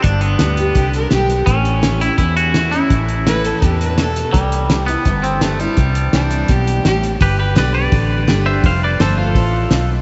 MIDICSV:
0, 0, Header, 1, 6, 480
1, 0, Start_track
1, 0, Key_signature, 1, "major"
1, 0, Tempo, 357995
1, 55, Time_signature, 4, 2, 24, 8
1, 13431, End_track
2, 0, Start_track
2, 0, Title_t, "Clean electric guitar"
2, 0, Program_c, 0, 27
2, 32, Note_on_c, 0, 62, 102
2, 283, Note_off_c, 0, 62, 0
2, 283, Note_on_c, 0, 59, 82
2, 1248, Note_off_c, 0, 59, 0
2, 1958, Note_on_c, 0, 61, 96
2, 2700, Note_on_c, 0, 64, 89
2, 2707, Note_off_c, 0, 61, 0
2, 2904, Note_off_c, 0, 64, 0
2, 2920, Note_on_c, 0, 64, 89
2, 3167, Note_off_c, 0, 64, 0
2, 3172, Note_on_c, 0, 66, 105
2, 3637, Note_on_c, 0, 64, 99
2, 3666, Note_off_c, 0, 66, 0
2, 4898, Note_off_c, 0, 64, 0
2, 4898, Note_on_c, 0, 62, 99
2, 5512, Note_off_c, 0, 62, 0
2, 5801, Note_on_c, 0, 55, 82
2, 6477, Note_off_c, 0, 55, 0
2, 6521, Note_on_c, 0, 59, 85
2, 7015, Note_on_c, 0, 60, 82
2, 7023, Note_off_c, 0, 59, 0
2, 7260, Note_off_c, 0, 60, 0
2, 7260, Note_on_c, 0, 57, 87
2, 7501, Note_off_c, 0, 57, 0
2, 7501, Note_on_c, 0, 55, 78
2, 9180, Note_off_c, 0, 55, 0
2, 9680, Note_on_c, 0, 67, 71
2, 9680, Note_on_c, 0, 71, 78
2, 9894, Note_off_c, 0, 67, 0
2, 9897, Note_off_c, 0, 71, 0
2, 9906, Note_on_c, 0, 67, 59
2, 9917, Note_on_c, 0, 71, 70
2, 10126, Note_off_c, 0, 67, 0
2, 10158, Note_off_c, 0, 71, 0
2, 10158, Note_on_c, 0, 71, 65
2, 10163, Note_on_c, 0, 74, 78
2, 10363, Note_off_c, 0, 71, 0
2, 10369, Note_off_c, 0, 74, 0
2, 10379, Note_on_c, 0, 71, 73
2, 10385, Note_on_c, 0, 74, 83
2, 11285, Note_off_c, 0, 71, 0
2, 11339, Note_off_c, 0, 74, 0
2, 11341, Note_on_c, 0, 72, 72
2, 11345, Note_on_c, 0, 76, 79
2, 11564, Note_off_c, 0, 72, 0
2, 11586, Note_off_c, 0, 76, 0
2, 11606, Note_on_c, 0, 72, 75
2, 11611, Note_on_c, 0, 77, 85
2, 11816, Note_off_c, 0, 72, 0
2, 11816, Note_off_c, 0, 77, 0
2, 11843, Note_on_c, 0, 71, 66
2, 11856, Note_on_c, 0, 74, 76
2, 12056, Note_off_c, 0, 71, 0
2, 12073, Note_on_c, 0, 72, 86
2, 12081, Note_off_c, 0, 74, 0
2, 12081, Note_on_c, 0, 69, 70
2, 12293, Note_off_c, 0, 69, 0
2, 12303, Note_on_c, 0, 65, 63
2, 12314, Note_off_c, 0, 72, 0
2, 12314, Note_on_c, 0, 69, 78
2, 13207, Note_off_c, 0, 65, 0
2, 13262, Note_off_c, 0, 69, 0
2, 13431, End_track
3, 0, Start_track
3, 0, Title_t, "Fiddle"
3, 0, Program_c, 1, 110
3, 1013, Note_on_c, 1, 67, 90
3, 1245, Note_off_c, 1, 67, 0
3, 1265, Note_on_c, 1, 70, 81
3, 1488, Note_off_c, 1, 70, 0
3, 1496, Note_on_c, 1, 67, 93
3, 1844, Note_off_c, 1, 67, 0
3, 4380, Note_on_c, 1, 71, 96
3, 4629, Note_on_c, 1, 69, 79
3, 4649, Note_off_c, 1, 71, 0
3, 4884, Note_on_c, 1, 67, 79
3, 4904, Note_off_c, 1, 69, 0
3, 5102, Note_off_c, 1, 67, 0
3, 5111, Note_on_c, 1, 71, 86
3, 5335, Note_off_c, 1, 71, 0
3, 5358, Note_on_c, 1, 69, 90
3, 5695, Note_off_c, 1, 69, 0
3, 8221, Note_on_c, 1, 62, 87
3, 8701, Note_on_c, 1, 67, 85
3, 8721, Note_off_c, 1, 62, 0
3, 9165, Note_off_c, 1, 67, 0
3, 9179, Note_on_c, 1, 67, 96
3, 9411, Note_off_c, 1, 67, 0
3, 13431, End_track
4, 0, Start_track
4, 0, Title_t, "Steel-string acoustic guitar"
4, 0, Program_c, 2, 25
4, 48, Note_on_c, 2, 43, 81
4, 528, Note_on_c, 2, 50, 55
4, 544, Note_on_c, 2, 55, 53
4, 547, Note_on_c, 2, 59, 53
4, 553, Note_on_c, 2, 67, 62
4, 752, Note_off_c, 2, 67, 0
4, 761, Note_off_c, 2, 50, 0
4, 768, Note_on_c, 2, 67, 48
4, 769, Note_off_c, 2, 55, 0
4, 770, Note_off_c, 2, 59, 0
4, 788, Note_on_c, 2, 59, 41
4, 962, Note_off_c, 2, 43, 0
4, 1001, Note_off_c, 2, 67, 0
4, 1001, Note_on_c, 2, 50, 87
4, 1011, Note_off_c, 2, 59, 0
4, 1458, Note_off_c, 2, 50, 0
4, 1474, Note_on_c, 2, 50, 54
4, 1483, Note_on_c, 2, 55, 52
4, 1488, Note_on_c, 2, 59, 58
4, 1495, Note_on_c, 2, 67, 59
4, 1705, Note_off_c, 2, 67, 0
4, 1714, Note_off_c, 2, 50, 0
4, 1718, Note_off_c, 2, 55, 0
4, 1721, Note_off_c, 2, 59, 0
4, 1721, Note_on_c, 2, 67, 52
4, 1735, Note_on_c, 2, 59, 47
4, 1957, Note_off_c, 2, 67, 0
4, 1964, Note_off_c, 2, 59, 0
4, 1970, Note_on_c, 2, 45, 76
4, 2437, Note_on_c, 2, 52, 50
4, 2447, Note_on_c, 2, 57, 55
4, 2454, Note_on_c, 2, 61, 57
4, 2455, Note_on_c, 2, 64, 58
4, 2675, Note_off_c, 2, 52, 0
4, 2675, Note_off_c, 2, 64, 0
4, 2680, Note_off_c, 2, 57, 0
4, 2683, Note_off_c, 2, 61, 0
4, 2691, Note_on_c, 2, 64, 53
4, 2712, Note_on_c, 2, 61, 43
4, 2883, Note_off_c, 2, 45, 0
4, 2922, Note_off_c, 2, 64, 0
4, 2932, Note_off_c, 2, 61, 0
4, 2937, Note_on_c, 2, 40, 85
4, 3411, Note_on_c, 2, 52, 48
4, 3414, Note_on_c, 2, 57, 55
4, 3425, Note_on_c, 2, 61, 54
4, 3426, Note_on_c, 2, 64, 63
4, 3636, Note_off_c, 2, 64, 0
4, 3642, Note_off_c, 2, 52, 0
4, 3643, Note_off_c, 2, 57, 0
4, 3649, Note_off_c, 2, 61, 0
4, 3652, Note_on_c, 2, 64, 54
4, 3678, Note_on_c, 2, 61, 49
4, 3846, Note_off_c, 2, 40, 0
4, 3882, Note_off_c, 2, 64, 0
4, 3892, Note_on_c, 2, 45, 78
4, 3895, Note_off_c, 2, 61, 0
4, 4383, Note_on_c, 2, 52, 58
4, 4387, Note_on_c, 2, 57, 60
4, 4394, Note_on_c, 2, 61, 61
4, 4402, Note_on_c, 2, 64, 62
4, 4804, Note_off_c, 2, 45, 0
4, 4834, Note_off_c, 2, 52, 0
4, 4836, Note_off_c, 2, 57, 0
4, 4839, Note_off_c, 2, 61, 0
4, 4843, Note_off_c, 2, 64, 0
4, 4857, Note_on_c, 2, 45, 79
4, 5311, Note_off_c, 2, 45, 0
4, 5336, Note_on_c, 2, 47, 77
4, 5791, Note_off_c, 2, 47, 0
4, 5819, Note_on_c, 2, 48, 86
4, 6306, Note_on_c, 2, 52, 55
4, 6316, Note_on_c, 2, 55, 57
4, 6317, Note_on_c, 2, 60, 56
4, 6324, Note_on_c, 2, 64, 62
4, 6531, Note_off_c, 2, 52, 0
4, 6536, Note_off_c, 2, 55, 0
4, 6536, Note_off_c, 2, 60, 0
4, 6540, Note_off_c, 2, 64, 0
4, 6555, Note_on_c, 2, 64, 53
4, 6574, Note_on_c, 2, 60, 47
4, 6729, Note_off_c, 2, 48, 0
4, 6775, Note_off_c, 2, 64, 0
4, 6785, Note_off_c, 2, 60, 0
4, 6802, Note_on_c, 2, 43, 84
4, 7261, Note_on_c, 2, 52, 57
4, 7269, Note_on_c, 2, 55, 51
4, 7277, Note_on_c, 2, 60, 61
4, 7287, Note_on_c, 2, 64, 67
4, 7489, Note_off_c, 2, 52, 0
4, 7493, Note_off_c, 2, 55, 0
4, 7497, Note_off_c, 2, 60, 0
4, 7498, Note_off_c, 2, 64, 0
4, 7514, Note_on_c, 2, 64, 63
4, 7539, Note_on_c, 2, 60, 48
4, 7701, Note_off_c, 2, 43, 0
4, 7736, Note_off_c, 2, 64, 0
4, 7748, Note_off_c, 2, 60, 0
4, 7750, Note_on_c, 2, 48, 87
4, 8227, Note_on_c, 2, 52, 60
4, 8235, Note_on_c, 2, 55, 56
4, 8241, Note_on_c, 2, 60, 57
4, 8247, Note_on_c, 2, 64, 56
4, 8656, Note_off_c, 2, 48, 0
4, 8678, Note_off_c, 2, 52, 0
4, 8682, Note_off_c, 2, 55, 0
4, 8685, Note_off_c, 2, 60, 0
4, 8688, Note_off_c, 2, 64, 0
4, 8708, Note_on_c, 2, 47, 84
4, 9159, Note_off_c, 2, 47, 0
4, 9189, Note_on_c, 2, 45, 77
4, 9640, Note_off_c, 2, 45, 0
4, 9659, Note_on_c, 2, 43, 86
4, 10129, Note_on_c, 2, 50, 85
4, 10135, Note_on_c, 2, 55, 85
4, 10137, Note_on_c, 2, 59, 89
4, 10143, Note_on_c, 2, 67, 100
4, 10571, Note_off_c, 2, 43, 0
4, 10590, Note_off_c, 2, 50, 0
4, 10592, Note_off_c, 2, 55, 0
4, 10593, Note_off_c, 2, 59, 0
4, 10596, Note_off_c, 2, 67, 0
4, 10617, Note_on_c, 2, 50, 92
4, 11077, Note_off_c, 2, 50, 0
4, 11094, Note_on_c, 2, 50, 86
4, 11098, Note_on_c, 2, 55, 89
4, 11105, Note_on_c, 2, 59, 85
4, 11107, Note_on_c, 2, 67, 90
4, 11551, Note_off_c, 2, 50, 0
4, 11554, Note_off_c, 2, 55, 0
4, 11557, Note_off_c, 2, 59, 0
4, 11558, Note_off_c, 2, 67, 0
4, 11590, Note_on_c, 2, 41, 89
4, 12062, Note_on_c, 2, 53, 90
4, 12074, Note_on_c, 2, 57, 92
4, 12084, Note_on_c, 2, 60, 90
4, 12086, Note_on_c, 2, 65, 88
4, 12495, Note_off_c, 2, 41, 0
4, 12515, Note_off_c, 2, 53, 0
4, 12521, Note_off_c, 2, 57, 0
4, 12526, Note_off_c, 2, 60, 0
4, 12528, Note_off_c, 2, 65, 0
4, 12545, Note_on_c, 2, 45, 99
4, 12997, Note_off_c, 2, 45, 0
4, 13022, Note_on_c, 2, 47, 84
4, 13431, Note_off_c, 2, 47, 0
4, 13431, End_track
5, 0, Start_track
5, 0, Title_t, "Fingered electric bass"
5, 0, Program_c, 3, 33
5, 53, Note_on_c, 3, 31, 85
5, 463, Note_off_c, 3, 31, 0
5, 535, Note_on_c, 3, 38, 76
5, 942, Note_off_c, 3, 38, 0
5, 1013, Note_on_c, 3, 36, 74
5, 1421, Note_off_c, 3, 36, 0
5, 1498, Note_on_c, 3, 35, 77
5, 1903, Note_off_c, 3, 35, 0
5, 1974, Note_on_c, 3, 33, 91
5, 2794, Note_off_c, 3, 33, 0
5, 2927, Note_on_c, 3, 40, 70
5, 3750, Note_off_c, 3, 40, 0
5, 3894, Note_on_c, 3, 33, 86
5, 4714, Note_off_c, 3, 33, 0
5, 4863, Note_on_c, 3, 40, 75
5, 5680, Note_off_c, 3, 40, 0
5, 5818, Note_on_c, 3, 36, 83
5, 6638, Note_off_c, 3, 36, 0
5, 6783, Note_on_c, 3, 31, 79
5, 7602, Note_off_c, 3, 31, 0
5, 7745, Note_on_c, 3, 36, 90
5, 8152, Note_off_c, 3, 36, 0
5, 8225, Note_on_c, 3, 36, 73
5, 8630, Note_off_c, 3, 36, 0
5, 8703, Note_on_c, 3, 35, 72
5, 9109, Note_off_c, 3, 35, 0
5, 9190, Note_on_c, 3, 33, 77
5, 9593, Note_off_c, 3, 33, 0
5, 9664, Note_on_c, 3, 31, 90
5, 10127, Note_off_c, 3, 31, 0
5, 10145, Note_on_c, 3, 35, 88
5, 10607, Note_off_c, 3, 35, 0
5, 10622, Note_on_c, 3, 33, 79
5, 11086, Note_off_c, 3, 33, 0
5, 11099, Note_on_c, 3, 31, 92
5, 11564, Note_off_c, 3, 31, 0
5, 11582, Note_on_c, 3, 29, 93
5, 12045, Note_off_c, 3, 29, 0
5, 12070, Note_on_c, 3, 31, 91
5, 12529, Note_off_c, 3, 31, 0
5, 12535, Note_on_c, 3, 33, 88
5, 13001, Note_off_c, 3, 33, 0
5, 13019, Note_on_c, 3, 35, 94
5, 13431, Note_off_c, 3, 35, 0
5, 13431, End_track
6, 0, Start_track
6, 0, Title_t, "Drums"
6, 49, Note_on_c, 9, 42, 74
6, 54, Note_on_c, 9, 36, 99
6, 183, Note_off_c, 9, 42, 0
6, 188, Note_off_c, 9, 36, 0
6, 282, Note_on_c, 9, 42, 57
6, 416, Note_off_c, 9, 42, 0
6, 523, Note_on_c, 9, 38, 99
6, 523, Note_on_c, 9, 42, 81
6, 657, Note_off_c, 9, 38, 0
6, 657, Note_off_c, 9, 42, 0
6, 767, Note_on_c, 9, 42, 61
6, 902, Note_off_c, 9, 42, 0
6, 1009, Note_on_c, 9, 42, 82
6, 1012, Note_on_c, 9, 36, 98
6, 1143, Note_off_c, 9, 42, 0
6, 1146, Note_off_c, 9, 36, 0
6, 1253, Note_on_c, 9, 42, 53
6, 1387, Note_off_c, 9, 42, 0
6, 1484, Note_on_c, 9, 38, 88
6, 1484, Note_on_c, 9, 42, 67
6, 1618, Note_off_c, 9, 38, 0
6, 1618, Note_off_c, 9, 42, 0
6, 1738, Note_on_c, 9, 42, 55
6, 1872, Note_off_c, 9, 42, 0
6, 1970, Note_on_c, 9, 42, 74
6, 1973, Note_on_c, 9, 36, 100
6, 2104, Note_off_c, 9, 42, 0
6, 2107, Note_off_c, 9, 36, 0
6, 2215, Note_on_c, 9, 42, 58
6, 2349, Note_off_c, 9, 42, 0
6, 2452, Note_on_c, 9, 38, 100
6, 2452, Note_on_c, 9, 42, 75
6, 2586, Note_off_c, 9, 38, 0
6, 2586, Note_off_c, 9, 42, 0
6, 2701, Note_on_c, 9, 42, 56
6, 2835, Note_off_c, 9, 42, 0
6, 2923, Note_on_c, 9, 42, 71
6, 2930, Note_on_c, 9, 36, 94
6, 3057, Note_off_c, 9, 42, 0
6, 3064, Note_off_c, 9, 36, 0
6, 3175, Note_on_c, 9, 42, 50
6, 3309, Note_off_c, 9, 42, 0
6, 3409, Note_on_c, 9, 38, 88
6, 3409, Note_on_c, 9, 42, 64
6, 3543, Note_off_c, 9, 38, 0
6, 3543, Note_off_c, 9, 42, 0
6, 3652, Note_on_c, 9, 42, 53
6, 3786, Note_off_c, 9, 42, 0
6, 3892, Note_on_c, 9, 42, 73
6, 3894, Note_on_c, 9, 36, 96
6, 4026, Note_off_c, 9, 42, 0
6, 4028, Note_off_c, 9, 36, 0
6, 4137, Note_on_c, 9, 42, 58
6, 4271, Note_off_c, 9, 42, 0
6, 4379, Note_on_c, 9, 38, 103
6, 4379, Note_on_c, 9, 42, 78
6, 4513, Note_off_c, 9, 38, 0
6, 4513, Note_off_c, 9, 42, 0
6, 4620, Note_on_c, 9, 42, 63
6, 4754, Note_off_c, 9, 42, 0
6, 4855, Note_on_c, 9, 42, 77
6, 4859, Note_on_c, 9, 36, 108
6, 4990, Note_off_c, 9, 42, 0
6, 4993, Note_off_c, 9, 36, 0
6, 5108, Note_on_c, 9, 42, 53
6, 5242, Note_off_c, 9, 42, 0
6, 5332, Note_on_c, 9, 38, 85
6, 5332, Note_on_c, 9, 42, 67
6, 5466, Note_off_c, 9, 38, 0
6, 5466, Note_off_c, 9, 42, 0
6, 5580, Note_on_c, 9, 42, 61
6, 5714, Note_off_c, 9, 42, 0
6, 5820, Note_on_c, 9, 36, 105
6, 5823, Note_on_c, 9, 42, 81
6, 5954, Note_off_c, 9, 36, 0
6, 5957, Note_off_c, 9, 42, 0
6, 6062, Note_on_c, 9, 42, 61
6, 6196, Note_off_c, 9, 42, 0
6, 6297, Note_on_c, 9, 38, 97
6, 6297, Note_on_c, 9, 42, 80
6, 6431, Note_off_c, 9, 38, 0
6, 6431, Note_off_c, 9, 42, 0
6, 6543, Note_on_c, 9, 42, 61
6, 6677, Note_off_c, 9, 42, 0
6, 6774, Note_on_c, 9, 42, 72
6, 6781, Note_on_c, 9, 36, 95
6, 6908, Note_off_c, 9, 42, 0
6, 6915, Note_off_c, 9, 36, 0
6, 7021, Note_on_c, 9, 42, 55
6, 7155, Note_off_c, 9, 42, 0
6, 7256, Note_on_c, 9, 38, 88
6, 7256, Note_on_c, 9, 42, 71
6, 7390, Note_off_c, 9, 38, 0
6, 7390, Note_off_c, 9, 42, 0
6, 7503, Note_on_c, 9, 42, 55
6, 7637, Note_off_c, 9, 42, 0
6, 7734, Note_on_c, 9, 42, 66
6, 7743, Note_on_c, 9, 36, 104
6, 7868, Note_off_c, 9, 42, 0
6, 7877, Note_off_c, 9, 36, 0
6, 7980, Note_on_c, 9, 42, 59
6, 8114, Note_off_c, 9, 42, 0
6, 8220, Note_on_c, 9, 38, 105
6, 8220, Note_on_c, 9, 42, 73
6, 8354, Note_off_c, 9, 38, 0
6, 8354, Note_off_c, 9, 42, 0
6, 8455, Note_on_c, 9, 42, 58
6, 8589, Note_off_c, 9, 42, 0
6, 8693, Note_on_c, 9, 42, 74
6, 8703, Note_on_c, 9, 36, 107
6, 8827, Note_off_c, 9, 42, 0
6, 8837, Note_off_c, 9, 36, 0
6, 8948, Note_on_c, 9, 42, 56
6, 9082, Note_off_c, 9, 42, 0
6, 9184, Note_on_c, 9, 38, 88
6, 9184, Note_on_c, 9, 42, 73
6, 9318, Note_off_c, 9, 38, 0
6, 9318, Note_off_c, 9, 42, 0
6, 9431, Note_on_c, 9, 42, 56
6, 9565, Note_off_c, 9, 42, 0
6, 9664, Note_on_c, 9, 46, 52
6, 9665, Note_on_c, 9, 36, 105
6, 9798, Note_off_c, 9, 46, 0
6, 9799, Note_off_c, 9, 36, 0
6, 10141, Note_on_c, 9, 38, 100
6, 10141, Note_on_c, 9, 46, 53
6, 10275, Note_off_c, 9, 38, 0
6, 10275, Note_off_c, 9, 46, 0
6, 10621, Note_on_c, 9, 46, 54
6, 10622, Note_on_c, 9, 36, 115
6, 10755, Note_off_c, 9, 46, 0
6, 10756, Note_off_c, 9, 36, 0
6, 11102, Note_on_c, 9, 38, 92
6, 11102, Note_on_c, 9, 46, 39
6, 11236, Note_off_c, 9, 38, 0
6, 11236, Note_off_c, 9, 46, 0
6, 11581, Note_on_c, 9, 36, 113
6, 11582, Note_on_c, 9, 46, 53
6, 11715, Note_off_c, 9, 36, 0
6, 11716, Note_off_c, 9, 46, 0
6, 12069, Note_on_c, 9, 38, 113
6, 12069, Note_on_c, 9, 46, 54
6, 12203, Note_off_c, 9, 38, 0
6, 12203, Note_off_c, 9, 46, 0
6, 12537, Note_on_c, 9, 36, 104
6, 12544, Note_on_c, 9, 46, 53
6, 12672, Note_off_c, 9, 36, 0
6, 12678, Note_off_c, 9, 46, 0
6, 13014, Note_on_c, 9, 38, 94
6, 13014, Note_on_c, 9, 46, 47
6, 13148, Note_off_c, 9, 38, 0
6, 13148, Note_off_c, 9, 46, 0
6, 13431, End_track
0, 0, End_of_file